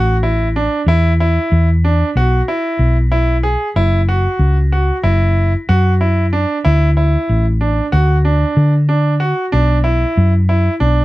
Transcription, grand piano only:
0.00 0.15 F#4 medium
0.23 0.47 E4 medium
0.56 0.80 D4 medium
0.88 1.12 E4 medium
1.20 1.68 E4 medium
1.84 2.08 D4 medium
2.17 2.40 F#4 medium
2.48 2.96 E4 medium
3.12 3.35 E4 medium
3.43 3.67 G#4 medium
3.76 4.00 E4 medium
4.09 4.56 F#4 medium
4.72 4.96 F#4 medium
5.03 5.51 E4 medium
5.69 5.92 F#4 medium
6.01 6.24 E4 medium
6.33 6.56 D4 medium
6.65 6.88 E4 medium
6.97 7.44 E4 medium
7.61 7.85 D4 medium
7.92 8.16 F#4 medium
8.25 8.72 D4 medium
8.89 9.13 D4 medium
9.20 9.44 F#4 medium
9.52 9.76 D4 medium
9.84 10.32 E4 medium
10.49 10.73 E4 medium
10.80 11.05 D4 medium

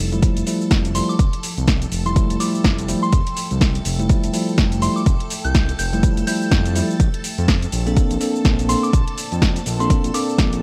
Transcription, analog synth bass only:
0.00 0.28 F1 medium
0.37 0.43 F1 medium
0.71 1.01 F1 medium
1.19 1.28 F1 medium
1.58 1.86 C2 medium
1.92 2.22 F1 medium
2.30 2.36 F1 medium
2.64 2.94 F1 loud
3.13 3.22 F1 loud
3.51 3.79 C2 medium
3.85 4.15 F1 medium
4.24 4.30 F1 medium
4.58 4.88 F1 loud
5.06 5.15 F1 loud
5.45 5.73 C2 medium
5.79 6.09 F1 medium
6.17 6.23 F1 medium
6.51 6.81 F2 loud
7.00 7.09 A#1 medium
7.38 7.66 F2 medium
7.72 8.02 A#1 medium
8.11 8.17 A#1 medium
8.45 8.75 A#1 medium
8.93 9.02 A#1 loud
9.32 9.60 F2 medium
9.66 9.96 A#1 medium
10.04 10.11 A#1 medium
10.38 10.62 A#1 loud

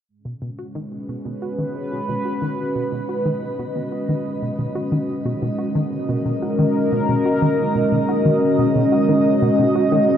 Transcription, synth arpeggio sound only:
0.25 0.34 B2 medium
0.42 0.50 B2 medium
0.59 0.67 F#4 medium
0.75 0.80 D#3 medium
1.09 1.17 B2 medium
1.25 1.34 B2 medium
1.42 1.50 F#4 medium
1.59 1.64 D#3 medium
1.92 2.00 B2 medium
2.09 2.17 B2 medium
2.25 2.34 F#4 medium
2.42 2.47 D#3 medium
2.75 2.84 B2 medium
2.92 3.00 B2 medium
3.09 3.17 F#4 medium
3.26 3.30 D#3 medium
3.59 3.67 B2 medium
3.76 3.84 B2 medium
3.92 4.00 F#4 medium
4.09 4.14 D#3 medium
4.42 4.50 B2 medium
4.59 4.67 B2 medium
4.75 4.84 F#4 medium
4.92 4.97 D#3 medium
5.25 5.34 B2 medium
5.42 5.50 B2 medium
5.59 5.67 F#4 medium
5.75 5.80 D#3 medium
6.09 6.17 B2 medium
6.25 6.34 B2 medium
6.42 6.51 F#4 medium
6.59 6.64 D#3 medium
6.92 7.00 B2 medium
7.09 7.17 B2 medium
7.25 7.34 F#4 medium
7.42 7.47 D#3 medium
7.75 7.84 B2 medium
7.92 8.00 B2 medium
8.09 8.17 F#4 medium
8.25 8.30 D#3 medium
8.59 8.67 B2 medium
8.75 8.84 B2 medium
8.92 9.00 F#4 medium
9.09 9.14 D#3 medium
9.42 9.50 B2 medium
9.59 9.67 B2 medium
9.75 9.84 F#4 medium
9.92 9.97 D#3 medium

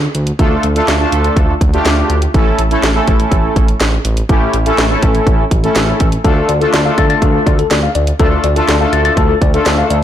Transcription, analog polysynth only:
0.39 0.66 A3 medium
0.39 0.66 D4 medium
0.39 0.66 F4 medium
0.39 0.66 A4 medium
0.76 0.94 A3 medium
0.76 0.94 D4 medium
0.76 0.94 F4 medium
0.76 0.94 A4 medium
1.00 1.54 A3 medium
1.00 1.54 D4 medium
1.00 1.54 F4 medium
1.00 1.54 A4 medium
1.73 2.18 A3 medium
1.73 2.18 D4 medium
1.73 2.18 F4 medium
1.73 2.18 G4 medium
2.34 2.61 A3 medium
2.34 2.61 C#4 medium
2.34 2.61 E4 medium
2.34 2.61 A4 loud
2.71 2.89 A3 medium
2.71 2.89 C#4 medium
2.71 2.89 E4 medium
2.71 2.89 A4 medium
2.95 3.67 A3 medium
2.95 3.67 C#4 medium
2.95 3.67 E4 medium
2.95 3.67 A4 medium
4.29 4.56 A3 medium
4.29 4.56 C#4 medium
4.29 4.56 E4 medium
4.29 4.56 G4 medium
4.66 4.84 A3 medium
4.66 4.84 C#4 medium
4.66 4.84 E4 medium
4.66 4.84 A4 medium
4.90 5.44 A3 medium
4.90 5.44 C#4 medium
4.90 5.44 E4 medium
4.90 5.44 A4 medium
5.63 6.09 A3 medium
5.63 6.09 C#4 medium
5.63 6.09 E4 medium
5.63 6.09 A4 medium
6.24 6.51 A3 medium
6.24 6.52 D4 medium
6.24 6.52 F4 medium
6.24 6.52 A4 medium
6.61 6.79 A3 medium
6.61 6.79 D4 medium
6.61 6.79 F4 medium
6.61 6.79 A4 medium
6.85 7.58 A3 medium
6.85 7.58 D4 medium
6.85 7.58 F4 medium
6.85 7.58 A4 medium
8.20 8.47 A3 medium
8.20 8.47 D4 medium
8.20 8.47 F4 medium
8.20 8.47 A4 medium
8.56 8.74 A3 medium
8.56 8.74 D4 medium
8.56 8.74 F4 medium
8.56 8.74 A4 loud
8.81 9.35 A3 medium
8.81 9.35 D4 medium
8.81 9.35 F4 medium
8.81 9.35 A4 loud
9.54 9.99 A3 medium
9.54 9.99 D4 medium
9.54 9.99 F4 medium
9.54 9.99 A4 medium

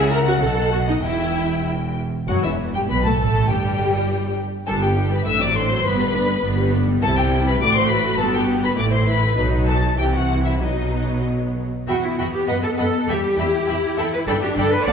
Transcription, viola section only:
0.00 0.12 G#4 medium
0.12 0.18 A#4 medium
0.27 0.33 F#4 medium
0.41 0.71 A4 medium
0.72 0.78 F#4 medium
0.88 0.94 D#4 medium
1.03 1.65 E4 medium
2.28 2.43 F#3 medium
2.44 2.75 E3 medium
2.74 2.80 G3 soft
2.89 2.95 B3 medium
3.05 3.18 A3 medium
3.19 3.48 A3 medium
3.50 4.38 G3 medium
4.68 4.81 G3 medium
4.68 4.81 D4 soft
4.82 4.96 B3 soft
4.82 4.96 G4 soft
4.96 5.11 G3 soft
4.96 5.11 D4 soft
5.12 5.26 B3 soft
5.12 5.26 G4 soft
5.25 5.39 A3 soft
5.25 5.39 D4 soft
5.41 5.55 F#3 soft
5.41 5.55 C4 soft
5.55 5.70 A3 soft
5.55 5.70 D4 soft
5.70 5.85 F#3 soft
5.70 5.85 C4 soft
5.85 5.98 B3 medium
5.85 5.99 D4 medium
5.99 6.14 G3 soft
5.99 6.13 B3 medium
6.14 6.27 B3 soft
6.14 6.29 D4 soft
6.28 6.44 G3 soft
6.28 6.42 B3 soft
6.43 6.57 B3 soft
6.43 6.57 D4 soft
6.58 6.73 G3 soft
6.58 6.70 B3 medium
6.71 6.86 B3 medium
6.71 6.87 D4 soft
6.87 7.00 G3 soft
6.87 7.02 B3 soft
7.02 7.56 G3 medium
7.02 7.56 E4 medium
7.60 8.19 A3 medium
7.60 8.77 F#4 soft
8.19 8.77 B3 medium
8.77 9.37 A3 soft
8.77 9.37 E4 soft
9.36 9.94 F#3 medium
9.36 9.93 D#4 medium
9.98 10.61 E3 soft
9.98 10.61 E4 soft
10.61 11.67 F#3 soft
10.61 11.67 B3 soft
11.88 13.04 B3 medium
13.08 13.38 G3 medium
13.39 14.28 E4 medium
14.28 14.85 D4 medium
14.86 14.93 A3 medium

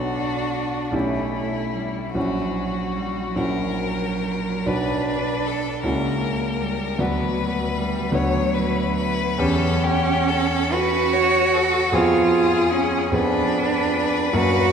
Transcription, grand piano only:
0.00 0.89 B1 soft
0.00 0.89 B3 soft
0.00 0.89 D4 soft
0.00 0.89 F#4 soft
0.92 2.11 B1 soft
0.92 2.11 C#4 soft
0.92 2.11 E4 soft
0.92 2.12 G4 soft
2.14 3.32 A#1 soft
2.14 3.32 C#4 soft
2.14 3.33 E4 soft
2.14 3.33 F#4 soft
3.36 4.63 A#1 soft
3.36 4.63 C#4 soft
3.36 4.63 E4 soft
3.36 4.63 F#4 soft
4.66 5.80 B1 soft
4.66 5.80 D4 soft
4.66 5.81 F#4 soft
5.83 6.95 C#2 soft
5.83 6.96 C#4 soft
5.83 6.96 E4 soft
5.83 6.96 F#4 soft
6.99 8.10 D2 soft
6.99 8.10 B3 soft
6.99 8.10 D4 soft
6.99 8.11 F#4 soft
8.12 9.36 D2 soft
8.12 9.36 B3 soft
8.12 9.36 D4 soft
8.12 9.37 F#4 soft
9.38 11.89 E2 soft
9.38 11.89 B3 soft
9.38 11.89 C#4 soft
9.38 11.89 G4 soft
11.92 13.09 F2 medium
11.92 13.09 B3 soft
11.92 13.09 G#4 soft
13.12 14.31 F2 soft
13.12 14.31 B3 soft
13.12 14.31 G#4 soft
14.33 14.72 F#2 soft
14.33 14.72 A#3 soft
14.33 14.72 C#4 soft
14.33 14.72 F#4 soft

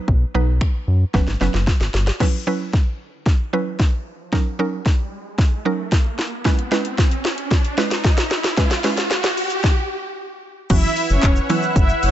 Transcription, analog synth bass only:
0.08 0.25 B1 medium
0.34 0.60 B1 loud
0.88 1.05 F#2 medium
1.14 1.22 F#1 loud
1.27 1.36 G#1 medium
1.41 1.49 F#1 medium
1.54 1.71 F#1 medium
1.80 1.89 G#1 medium
1.94 2.11 G1 medium
10.70 10.87 F#1 loud
11.10 11.18 F#1 loud
11.23 11.40 E1 medium
11.76 11.93 F#1 loud
12.03 12.11 F#1 medium

